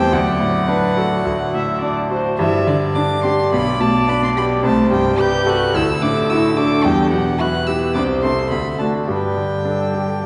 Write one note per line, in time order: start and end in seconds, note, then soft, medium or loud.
0.00 0.10 E2 medium
0.00 0.16 E3 medium
0.00 0.13 G3 medium
0.00 0.16 C4 soft
0.00 0.13 G4 medium
0.00 0.16 C5 medium
0.00 0.14 G5 medium
0.12 1.22 D2 medium
0.12 2.07 F#3 medium
0.12 0.65 D5 medium
0.12 2.11 F#5 medium
0.40 0.86 A2 soft
0.68 1.14 D4 soft
0.68 1.00 B4 medium
0.96 1.42 F#4 soft
0.96 1.25 A4 medium
1.25 2.36 D2 medium
1.25 1.34 F#5 medium
1.54 2.00 A2 soft
1.54 1.82 E5 medium
1.82 2.28 D4 soft
1.82 2.10 D5 medium
2.11 2.39 F#4 soft
2.11 2.39 C5 medium
2.38 3.48 G2 medium
2.38 2.66 E3 medium
2.38 2.69 E5 medium
2.67 3.12 D3 soft
2.67 2.76 D3 soft
2.67 2.97 D5 medium
2.95 3.41 D4 soft
2.95 3.04 D4 medium
2.95 3.24 D6 medium
3.23 3.31 C4 medium
3.23 3.52 G4 soft
3.23 3.52 C6 medium
3.52 4.60 B1 medium
3.52 3.79 B3 medium
3.52 4.65 D5 medium
3.52 3.82 B5 medium
3.80 4.25 B2 soft
3.80 3.88 A3 medium
3.80 4.10 A5 medium
4.07 4.13 B3 medium
4.07 4.53 D4 soft
4.07 4.22 B5 medium
4.22 4.28 C4 medium
4.22 4.29 C6 medium
4.36 4.65 B3 medium
4.36 4.64 G4 soft
4.36 4.45 B5 medium
4.63 5.71 C2 medium
4.63 4.91 A3 medium
4.63 5.18 C5 medium
4.63 4.91 A5 medium
4.91 5.36 G2 medium
4.91 5.18 G3 medium
4.91 5.21 G5 medium
5.18 5.63 G4 medium
5.18 5.48 G4 medium
5.18 5.76 B4 medium
5.18 5.51 G6 medium
5.46 5.74 F#4 medium
5.46 5.74 A4 soft
5.46 5.77 F#6 medium
5.74 6.81 D2 medium
5.74 5.83 E4 medium
5.74 6.87 A4 medium
5.74 6.04 E6 medium
6.02 6.46 A2 soft
6.02 6.10 D4 medium
6.02 6.31 D6 medium
6.29 6.56 E4 medium
6.29 6.74 F#4 soft
6.29 6.58 E6 medium
6.57 6.86 D4 medium
6.57 6.85 A4 soft
6.57 6.85 D6 medium
6.84 7.92 E2 medium
6.84 7.11 G3 medium
6.84 7.40 G4 medium
6.84 7.11 G5 medium
7.11 7.57 B2 soft
7.11 7.20 F#3 medium
7.11 7.41 F#5 medium
7.40 7.84 E4 soft
7.40 7.48 F#4 medium
7.40 7.98 B4 medium
7.40 7.68 F#6 medium
7.67 7.76 E4 medium
7.67 7.95 G4 soft
7.67 7.94 E6 medium
7.94 8.49 C2 medium
7.94 8.04 D4 medium
7.94 8.52 C5 medium
7.94 8.02 D6 medium
8.22 8.32 C4 medium
8.22 8.48 E4 soft
8.22 8.49 A4 soft
8.22 8.50 C6 medium
8.51 9.06 D2 soft
8.51 8.59 B3 medium
8.51 9.07 A4 soft
8.51 8.79 B5 medium
8.79 8.88 A3 soft
8.79 9.05 D4 soft
8.79 9.05 F#4 soft
8.79 8.87 A5 medium
9.08 10.20 G2 soft
9.08 10.26 G3 medium
9.08 9.59 B4 soft
9.08 10.26 G5 medium
9.37 9.83 D3 soft
9.65 10.12 D4 soft
9.65 9.96 A4 medium
9.94 10.26 G4 soft
9.94 10.25 G4 soft